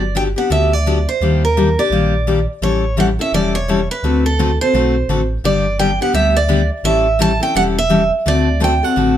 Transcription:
Already playing: sub bass G1, steel-string acoustic guitar D5
0.15 steel-string acoustic guitar D3 F#3 B3 D4 G4 G5
0.36 steel-string acoustic guitar B3 D4 G4 F#5
0.50 sub bass D2, steel-string acoustic guitar D3 F#3 B3 D4 G4 E5
0.73 steel-string acoustic guitar D5
0.86 steel-string acoustic guitar D3 F#3 B3 D4 G4
1.09 steel-string acoustic guitar C5
1.21 sub bass D#2, steel-string acoustic guitar D#3 G3 A#3 D4 G4
1.45 steel-string acoustic guitar A#4
1.57 steel-string acoustic guitar D#3 G3 A#3 D4 G4
1.79 steel-string acoustic guitar A#3 D4 G4 D5
1.90 sub bass A#1, steel-string acoustic guitar D#3 G3 A#3 D4 G4
2.27 steel-string acoustic guitar D#3 G3 A#3 D4 G4
2.62 sub bass A1, steel-string acoustic guitar E3 G3 C#4 E4 A4 C#5
2.97 steel-string acoustic guitar E3 G3 C#4 E4 A4 F#5
3.19 steel-string acoustic guitar C#4 E4 A4 E5
3.32 sub bass E1, steel-string acoustic guitar E3 G3 C#4 E4 A4 D5
3.55 steel-string acoustic guitar C#5
3.68 steel-string acoustic guitar E3 G3 C#4 E4 A4
3.91 steel-string acoustic guitar B4
4.03 sub bass D2, steel-string acoustic guitar D3 A3 C4 F#4 A4
4.26 steel-string acoustic guitar A4
4.39 steel-string acoustic guitar D3 A3 C4 F#4 A4
4.61 steel-string acoustic guitar C4 F#4 A4 C5
4.74 sub bass B1, steel-string acoustic guitar D3 A3 C4 F#4 A4
5.08 sub bass A1, steel-string acoustic guitar D3 A3 C4 F#4 A4
5.44 sub bass G1, steel-string acoustic guitar D3 G3 B3 D4 G4 D5
5.79 steel-string acoustic guitar D3 G3 B3 D4 G4 G5
6.01 steel-string acoustic guitar B3 D4 G4 F#5
6.13 sub bass D2, steel-string acoustic guitar D3 G3 B3 D4 G4 E5
6.37 steel-string acoustic guitar D5
6.48 steel-string acoustic guitar D3 G3 B3 D4 G4
6.83 sub bass A1, steel-string acoustic guitar E3 G3 C#4 E4 A4 E5
7.19 steel-string acoustic guitar E3 G3 C#4 E4 A4 A5
7.40 steel-string acoustic guitar C#4 E4 A4 G5
7.55 sub bass E1, steel-string acoustic guitar E3 G3 C#4 E4 A4 F#5
7.79 steel-string acoustic guitar E5
7.90 steel-string acoustic guitar E3 G3 C#4 E4 A4
8.26 sub bass D2, steel-string acoustic guitar D3 A3 C4 F#4 A4 D5
8.60 steel-string acoustic guitar D3 A3 C4 F#4 A4 G5
8.83 steel-string acoustic guitar C4 F#4 A4 F#5
8.96 sub bass A1, steel-string acoustic guitar D3 A3 C4 F#4 A4

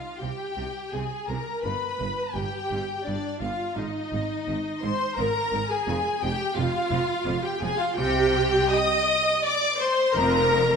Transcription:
Already playing: violin section F4 F5, viola section F4
0.19 double bass section C2, cello section C3, violin section G4 G5, viola section G4
0.57 double bass section C2, cello section C3
0.91 double bass section C2, cello section C3, violin section G#4 G#5, viola section G#4
1.28 double bass section C2, cello section C3, viola section A#4, violin section A#4 A#5
1.63 double bass section G1, cello section G2, violin section B4 B5, viola section B4
1.99 double bass section G1, cello section G2
2.34 double bass section G1, cello section G2, violin section G4 G5, viola section G4
2.71 double bass section G1, cello section G2
3.04 double bass section G1, cello section G2, viola section D4, violin section D4 D5
3.40 double bass section G1, cello section G2, violin section F4 F5, viola section F4
3.77 double bass section G#1, cello section G#2, violin section D#4 D#5, viola section D#4
4.12 double bass section G#1, cello section G#2
4.47 double bass section G#1, cello section G#2
4.82 double bass section G#1, cello section G#2, violin section C5 C6, viola section C5
5.16 double bass section G#1, cello section G#2, viola section A#4, violin section A#4 A#5
5.53 double bass section G#1, cello section G#2
5.69 viola section G#4, violin section G#4 G#5
5.87 double bass section F1, cello section F2
6.22 double bass section F1, cello section F2, violin section G4 G5, viola section G4
6.56 double bass section F1, cello section F2, violin section F4 F5, viola section F4
6.92 double bass section F1, cello section F2
7.26 double bass section F1, cello section F2
7.44 violin section G4 G5, viola section G4
7.61 double bass section F1, cello section F2, viola section G#4, violin section G#4 G#5
7.78 violin section F4 F5, viola section F4
7.95 double bass section C2, cello section C3, violin section G4 G5, viola section G4
8.71 violin section D#5 D#6, viola section D#5
9.43 viola section D5, violin section D5 D6
9.78 violin section C5 C6, viola section C5
10.14 double bass section F1, cello section F2, violin section A#4 A#5, viola section A#4

